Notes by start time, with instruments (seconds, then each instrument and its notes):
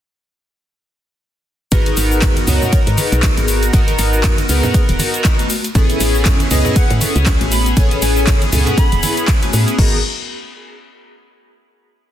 1.72 fm bass G#1, analog polysynth B3 D#4 F#4 A#4, vibraphone G#4 B4, kick, closed hi-hat, ride, high conga, shaker
1.86 closed hi-hat, shaker
1.97 fm bass G#1, open hi-hat, shaker
2.11 vibraphone G#4 B4, shaker
2.22 kick, clap, closed hi-hat, ride, low conga, shaker
2.36 closed hi-hat, high conga, shaker
2.47 fm bass C#2, analog polysynth B3 D#4 F#4 A#4, vibraphone A#4 C#5, open hi-hat, low conga, shaker
2.62 low conga, shaker
2.73 kick, closed hi-hat, ride, shaker
2.87 fm bass G#2, closed hi-hat, shaker
2.98 vibraphone G#4 B4, open hi-hat, high conga, shaker
3.12 fm bass B1, closed hi-hat, shaker
3.23 kick, clap, closed hi-hat, ride, shaker
3.37 fm bass G#1, vibraphone B3 G#4, closed hi-hat, shaker
3.48 open hi-hat, shaker
3.63 closed hi-hat, shaker
3.73 fm bass G#1, analog polysynth B3 D#4 F#4 A#4, vibraphone F#4 A#4, kick, closed hi-hat, ride, high conga, shaker
3.88 closed hi-hat, shaker
3.99 fm bass G#1, open hi-hat, shaker
4.13 vibraphone F#4 A#4, shaker
4.23 kick, clap, closed hi-hat, ride, low conga, shaker
4.38 closed hi-hat, high conga, shaker
4.49 fm bass C#2, analog polysynth B3 D#4 F#4 A#4, vibraphone G#4 B4, open hi-hat, shaker
4.63 low conga, shaker
4.74 kick, closed hi-hat, ride, shaker
4.89 fm bass D#1, closed hi-hat, shaker
4.99 vibraphone F#4 A#4, open hi-hat, high conga, shaker
5.14 closed hi-hat, shaker
5.24 kick, clap, closed hi-hat, ride, shaker
5.39 vibraphone A3 F#4, closed hi-hat, shaker
5.50 open hi-hat, shaker
5.64 closed hi-hat, shaker
5.75 fm bass A1, analog polysynth B3 C#4 E4 G#4, vibraphone C#4 A4, kick, closed hi-hat, ride, high conga, shaker
5.90 closed hi-hat, shaker
6.00 fm bass A1, open hi-hat, shaker
6.15 vibraphone C#4 A4, shaker
6.25 kick, clap, closed hi-hat, ride, low conga, shaker
6.40 closed hi-hat, high conga, shaker
6.51 fm bass C#2, analog polysynth B3 C#4 E4 G#4, vibraphone G#4 B4, digital synth lead D#5, open hi-hat, low conga, shaker
6.65 low conga, shaker
6.76 digital synth lead F#5, kick, closed hi-hat, ride, shaker
6.90 fm bass A2, closed hi-hat, shaker
7.01 vibraphone C#4 A4, open hi-hat, high conga, shaker
7.16 fm bass C#2, closed hi-hat, shaker
7.26 kick, clap, closed hi-hat, ride, shaker
7.41 fm bass A1, vibraphone A3 F#4, closed hi-hat, shaker
7.52 digital synth lead B5, open hi-hat, shaker
7.66 closed hi-hat, shaker
7.77 fm bass A1, analog polysynth B3 C#4 E4 G#4, vibraphone A4 C#5, kick, closed hi-hat, ride, high conga, shaker
7.91 closed hi-hat, shaker
8.02 fm bass A1, digital synth lead G#5, open hi-hat, shaker
8.16 vibraphone A4 C#5, digital synth lead G#5, shaker
8.27 kick, clap, closed hi-hat, ride, low conga, shaker
8.42 closed hi-hat, high conga, shaker
8.52 fm bass C#2, analog polysynth B3 C#4 E4 G#4, vibraphone C#4 A4, open hi-hat, low conga, shaker
8.66 closed hi-hat, low conga, shaker
8.78 digital synth lead B5, kick, closed hi-hat, ride, shaker
8.92 fm bass E1, closed hi-hat, shaker
9.03 vibraphone E4 G#4, open hi-hat, high conga, shaker
9.17 closed hi-hat, shaker
9.28 kick, clap, closed hi-hat, ride, shaker
9.42 vibraphone A3 F#4, closed hi-hat, shaker
9.53 fm bass A2, open hi-hat, shaker
9.68 closed hi-hat, shaker
9.78 fm bass G#1, analog polysynth B3 D#4 F#4 A#4, vibraphone G#4, kick, crash